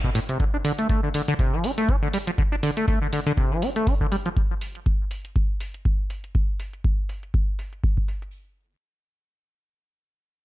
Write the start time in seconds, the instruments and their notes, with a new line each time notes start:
0.04 acid bass B2, kick
0.15 acid bass A2, open hi-hat
0.29 acid bass C3, closed hi-hat
0.40 acid bass D3, kick, closed hi-hat
0.54 acid bass D4
0.65 acid bass D3, open hi-hat
0.78 acid bass A3, closed hi-hat
0.89 acid bass A3, kick, closed hi-hat
1.03 acid bass D3
1.14 acid bass D3, open hi-hat
1.28 acid bass D3, closed hi-hat
1.39 acid bass C3, kick, closed hi-hat
1.53 acid bass F3
1.64 acid bass D4, open hi-hat
1.78 acid bass A3, closed hi-hat
1.89 acid bass D4, kick, closed hi-hat
2.02 acid bass D3
2.13 acid bass G3, open hi-hat
2.27 acid bass F3, closed hi-hat
2.38 acid bass D3, kick, closed hi-hat
2.52 acid bass D4
2.63 acid bass D3, open hi-hat
2.77 acid bass A3, closed hi-hat
2.88 acid bass A3, kick, closed hi-hat
3.02 acid bass D3
3.13 acid bass D3, open hi-hat
3.26 acid bass D3, closed hi-hat
3.37 acid bass C3, kick, closed hi-hat
3.51 acid bass F3
3.62 acid bass D4, open hi-hat
3.76 acid bass A3, closed hi-hat
3.87 acid bass D4, kick, open hi-hat
4.01 acid bass D3, kick
4.12 acid bass G3, open hi-hat
4.26 acid bass F3, closed hi-hat
4.37 kick, closed hi-hat
4.61 open hi-hat
4.75 closed hi-hat
4.86 kick, closed hi-hat
5.11 open hi-hat
5.25 closed hi-hat
5.36 kick, closed hi-hat
5.60 open hi-hat
5.74 closed hi-hat
5.85 kick, closed hi-hat
6.10 open hi-hat
6.24 closed hi-hat
6.35 kick, closed hi-hat
6.60 open hi-hat
6.73 closed hi-hat
6.84 kick, closed hi-hat
7.09 open hi-hat
7.23 closed hi-hat
7.34 kick, closed hi-hat
7.59 open hi-hat
7.73 closed hi-hat
7.84 kick, open hi-hat
7.97 kick
8.08 open hi-hat
8.22 closed hi-hat